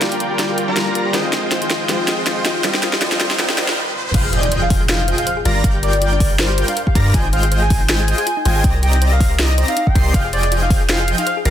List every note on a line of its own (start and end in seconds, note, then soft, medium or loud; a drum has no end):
0.00 0.73 D3 medium
0.00 0.74 F3 medium
0.00 0.66 G3 medium
0.00 0.74 G3 medium
0.00 0.75 A#3 medium
0.00 0.66 F4 medium
0.00 0.75 F4 loud
0.00 0.06 F4 medium
0.00 0.66 A#4 medium
0.00 0.66 D5 medium
0.00 0.66 G5 medium
0.00 snare medium
0.00 closed hi-hat medium
0.00 riser medium
0.12 0.17 D4 medium
0.12 closed hi-hat medium
0.20 0.25 A#4 medium
0.20 closed hi-hat medium
0.31 0.34 G4 loud
0.39 0.45 A#4 medium
0.39 snare medium
0.39 closed hi-hat medium
0.49 0.53 G4 loud
0.58 0.62 F4 medium
0.58 closed hi-hat medium
0.68 1.12 G3 medium
0.68 0.73 D4 medium
0.68 1.12 F4 medium
0.68 1.12 A#4 medium
0.68 1.12 D5 medium
0.68 1.12 A#5 loud
0.76 1.12 D3 medium
0.76 1.12 F3 medium
0.76 1.12 G3 medium
0.76 1.12 A#3 medium
0.76 1.13 F4 medium
0.76 0.81 A#4 medium
0.76 snare medium
0.76 closed hi-hat medium
0.87 0.90 G4 loud
0.95 1.02 A#4 medium
0.95 closed hi-hat medium
1.06 1.09 G4 loud
1.12 1.86 D#3 medium
1.12 1.87 F3 medium
1.12 1.88 G#3 medium
1.12 1.88 C4 medium
1.12 1.18 F4 medium
1.12 1.88 F4 medium
1.12 1.88 C5 medium
1.12 1.88 D#5 medium
1.12 1.88 G5 medium
1.12 snare medium
1.12 closed hi-hat medium
1.16 1.89 F4 medium
1.24 1.30 D#4 medium
1.33 1.37 C5 medium
1.33 snare medium
1.33 closed hi-hat medium
1.43 1.47 G#4 loud
1.51 1.58 C5 medium
1.51 snare medium
1.51 closed hi-hat medium
1.62 1.65 G#4 medium
1.62 closed hi-hat medium
1.70 1.75 F4 medium
1.70 snare medium
1.70 closed hi-hat medium
1.81 1.86 D#4 medium
1.87 2.61 D#3 medium
1.87 2.62 F3 medium
1.87 2.63 G#3 medium
1.87 2.63 C4 medium
1.87 1.93 F4 medium
1.87 2.63 F4 medium
1.87 2.64 F4 medium
1.87 2.63 C5 medium
1.87 2.63 D#5 medium
1.87 2.63 G5 medium
1.87 snare medium
1.87 closed hi-hat medium
1.99 2.05 D#4 medium
2.08 2.12 C5 medium
2.08 snare medium
2.08 closed hi-hat medium
2.18 2.22 G#4 loud
2.26 2.33 C5 medium
2.26 snare medium
2.26 closed hi-hat medium
2.37 2.40 G#4 medium
2.45 2.50 F4 medium
2.45 snare medium
2.45 closed hi-hat medium
2.56 2.61 D#4 medium
2.62 2.98 D#3 medium
2.62 2.99 F3 medium
2.62 3.00 G3 medium
2.62 3.01 C4 medium
2.62 2.68 F4 medium
2.62 3.00 F4 medium
2.62 3.01 F4 medium
2.62 3.00 C5 medium
2.62 3.00 D#5 medium
2.62 3.00 G5 medium
2.62 snare medium
2.62 closed hi-hat medium
2.74 2.80 D#4 medium
2.74 snare medium
2.83 2.87 C5 medium
2.83 snare medium
2.83 closed hi-hat medium
2.93 2.97 G4 loud
2.93 snare medium
3.00 3.36 D#3 medium
3.00 3.37 F3 medium
3.00 3.38 G3 medium
3.00 3.38 C4 medium
3.00 3.06 F4 medium
3.00 3.38 F4 medium
3.00 3.38 C5 medium
3.00 3.38 D#5 medium
3.00 3.38 G5 medium
3.00 snare loud
3.00 closed hi-hat medium
3.04 3.39 F4 loud
3.12 3.17 D#4 medium
3.12 snare medium
3.12 closed hi-hat medium
3.20 3.25 C5 medium
3.20 snare loud
3.20 closed hi-hat medium
3.31 3.34 G4 loud
3.31 snare medium
3.37 3.55 D#3 medium
3.37 3.56 F3 medium
3.37 3.56 G3 medium
3.37 3.57 G3 medium
3.37 3.57 C4 medium
3.37 3.56 F4 medium
3.37 3.43 F4 medium
3.37 3.56 C5 medium
3.37 3.57 D#5 medium
3.37 3.57 G5 medium
3.37 snare loud
3.37 closed hi-hat medium
3.41 3.57 F4 loud
3.49 3.55 D#4 medium
3.49 snare medium
3.56 3.74 D#3 medium
3.56 3.75 F3 medium
3.56 3.75 G3 medium
3.56 3.76 C4 medium
3.56 3.62 F4 medium
3.56 3.75 F4 medium
3.56 3.75 C5 medium
3.56 3.75 D#5 medium
3.56 3.75 G5 medium
3.56 snare loud
3.56 closed hi-hat medium
3.60 3.76 F4 loud
3.68 3.73 D#4 medium
3.68 snare medium
3.95 high tom medium
4.06 mid tom medium
4.14 5.14 F1 loud
4.14 5.16 F3 medium
4.14 5.16 F4 medium
4.14 5.16 G#4 medium
4.14 4.20 C5 medium
4.14 5.16 D#5 medium
4.14 4.34 F5 loud
4.14 5.16 G5 medium
4.14 5.16 G6 medium
4.14 kick loud
4.14 closed hi-hat medium
4.14 crash loud
4.14 impact medium
4.24 4.28 G#4 loud
4.33 4.37 F4 medium
4.33 4.53 D5 loud
4.33 closed hi-hat medium
4.43 4.48 D#4 medium
4.43 closed hi-hat medium
4.52 4.56 C5 medium
4.52 closed hi-hat medium
4.62 4.65 G#4 loud
4.62 4.82 F5 medium
4.70 4.77 C5 medium
4.70 kick loud
4.70 open hi-hat loud
4.81 4.84 G#4 loud
4.89 4.93 F4 medium
4.89 5.10 F5 loud
4.89 snare loud
4.89 closed hi-hat medium
4.99 5.05 D#4 medium
5.08 5.12 C5 medium
5.08 closed hi-hat medium
5.18 5.22 G#4 loud
5.18 5.38 F5 loud
5.18 closed hi-hat medium
5.27 5.33 C5 medium
5.27 closed hi-hat medium
5.37 5.40 G#4 loud
5.45 5.62 G1 loud
5.45 5.62 G3 medium
5.45 5.62 F4 medium
5.45 5.50 F4 medium
5.45 5.62 A#4 medium
5.45 5.62 D5 medium
5.45 5.73 F5 medium
5.45 5.62 A#5 medium
5.45 5.62 A#6 medium
5.45 closed hi-hat medium
5.56 5.61 D4 medium
5.64 6.64 G1 loud
5.64 6.66 G3 medium
5.64 6.66 F4 medium
5.64 6.66 A#4 medium
5.64 5.68 A#4 medium
5.64 6.66 D5 medium
5.64 6.66 G5 medium
5.64 6.66 G6 medium
5.64 kick loud
5.64 closed hi-hat medium
5.74 5.78 G4 loud
5.83 5.89 A#4 medium
5.83 6.03 D5 loud
5.83 closed hi-hat medium
5.93 5.97 G4 loud
5.93 closed hi-hat medium
6.02 6.06 F4 medium
6.02 closed hi-hat medium
6.12 6.17 D4 medium
6.12 6.32 D5 medium
6.20 6.25 A#4 medium
6.20 kick loud
6.20 open hi-hat loud
6.31 6.34 G4 loud
6.39 6.45 A#4 medium
6.39 6.60 C5 loud
6.39 snare loud
6.39 closed hi-hat medium
6.49 6.53 G4 loud
6.58 6.62 F4 medium
6.58 closed hi-hat medium
6.68 6.73 D4 medium
6.68 6.81 F5 medium
6.68 closed hi-hat medium
6.77 6.81 A#4 medium
6.77 closed hi-hat medium
6.87 6.90 G4 loud
6.87 7.07 F5 medium
6.87 kick medium
6.95 7.12 G2 loud
6.95 7.12 G3 medium
6.95 7.12 F4 medium
6.95 7.02 A#4 medium
6.95 7.12 A#4 medium
6.95 7.12 D5 medium
6.95 7.12 A#5 medium
6.95 7.12 A#6 medium
6.95 kick loud
6.95 closed hi-hat medium
7.05 7.09 G4 loud
7.14 8.14 G#1 loud
7.14 8.16 G#3 medium
7.14 7.18 F4 medium
7.14 8.16 F4 medium
7.14 8.16 C5 medium
7.14 8.16 G5 medium
7.14 7.28 G#5 loud
7.14 8.16 G6 medium
7.14 kick loud
7.14 closed hi-hat medium
7.24 7.30 D#4 medium
7.33 7.37 C5 medium
7.33 7.53 F5 loud
7.33 closed hi-hat medium
7.43 7.47 G#4 loud
7.43 closed hi-hat medium
7.52 7.58 C5 medium
7.52 closed hi-hat medium
7.62 7.65 G#4 loud
7.62 7.82 G#5 loud
7.70 7.75 F4 medium
7.70 kick loud
7.70 open hi-hat medium
7.81 7.86 D#4 medium
7.89 7.93 C5 medium
7.89 8.10 G#5 medium
7.89 snare loud
7.89 closed hi-hat medium
7.99 8.03 G#4 loud
8.08 8.14 C5 medium
8.08 closed hi-hat medium
8.18 8.22 G#4 loud
8.18 8.38 G#5 loud
8.18 closed hi-hat medium
8.27 8.31 F4 medium
8.27 closed hi-hat medium
8.37 8.42 D#4 medium
8.45 8.62 G#1 loud
8.45 8.62 G#3 medium
8.45 8.62 F4 medium
8.45 8.62 C5 medium
8.45 8.50 C5 medium
8.45 8.62 D#5 medium
8.45 8.73 G5 loud
8.45 8.62 G#5 medium
8.45 8.62 G#6 medium
8.45 closed hi-hat medium
8.56 8.59 G#4 loud
8.64 9.64 C2 loud
8.64 9.66 C4 medium
8.64 9.66 G4 medium
8.64 8.70 C5 medium
8.64 9.66 D5 medium
8.64 9.66 D#5 medium
8.64 9.66 A#6 medium
8.64 kick loud
8.64 closed hi-hat medium
8.74 8.78 A#4 loud
8.83 8.87 G4 medium
8.83 9.03 G5 loud
8.83 closed hi-hat medium
8.93 8.98 D#4 medium
8.93 closed hi-hat medium
9.02 9.06 C5 medium
9.02 closed hi-hat medium
9.12 9.15 A#4 loud
9.12 9.41 F5 loud
9.20 9.27 C5 medium
9.20 kick loud
9.20 open hi-hat medium
9.31 9.34 A#4 loud
9.39 9.43 G4 medium
9.39 9.60 D#5 loud
9.39 snare loud
9.39 closed hi-hat medium
9.49 9.55 D#4 medium
9.58 9.64 C5 loud
9.58 closed hi-hat medium
9.68 9.72 D#4 medium
9.68 9.88 F5 medium
9.68 closed hi-hat medium
9.77 9.81 D#4 medium
9.77 closed hi-hat medium
9.87 9.92 D#5 medium
9.87 10.07 G5 loud
9.87 kick medium
9.95 10.12 C2 loud
9.95 10.12 C4 medium
9.95 10.12 G4 medium
9.95 9.98 A#4 medium
9.95 10.12 D5 medium
9.95 10.12 D#5 medium
9.95 10.12 C6 medium
9.95 10.12 C7 medium
9.95 kick loud
9.95 closed hi-hat medium
10.06 10.09 A#4 loud
10.14 11.14 F1 loud
10.14 11.16 F3 medium
10.14 11.16 F4 medium
10.14 11.16 G#4 medium
10.14 10.18 C5 medium
10.14 11.16 D#5 medium
10.14 10.28 F5 loud
10.14 11.16 G5 medium
10.14 11.16 G6 medium
10.14 kick loud
10.14 closed hi-hat medium
10.14 ride soft
10.24 10.28 G#4 loud
10.33 10.39 C5 medium
10.33 10.53 D5 loud
10.33 closed hi-hat medium
10.43 10.47 G#4 loud
10.43 closed hi-hat medium
10.52 10.56 F4 medium
10.52 closed hi-hat medium
10.62 10.67 D#4 medium
10.62 10.82 F5 loud
10.70 10.75 C5 medium
10.70 kick loud
10.70 open hi-hat medium
10.81 10.84 G#4 loud
10.89 10.96 C5 medium
10.89 11.10 F5 medium
10.89 snare loud
10.89 closed hi-hat medium
10.99 11.03 G#4 loud
11.08 11.12 F4 medium
11.08 closed hi-hat medium
11.18 11.23 D#4 medium
11.18 11.38 F5 loud
11.18 closed hi-hat medium
11.27 11.31 C5 medium
11.27 closed hi-hat medium
11.37 11.40 G#4 loud
11.45 11.50 G1 loud
11.45 11.50 G3 medium
11.45 11.50 F4 medium
11.45 11.50 A#4 medium
11.45 11.50 D5 medium
11.45 11.50 F5 loud
11.45 11.50 A#5 medium
11.45 11.50 A#6 medium
11.45 closed hi-hat medium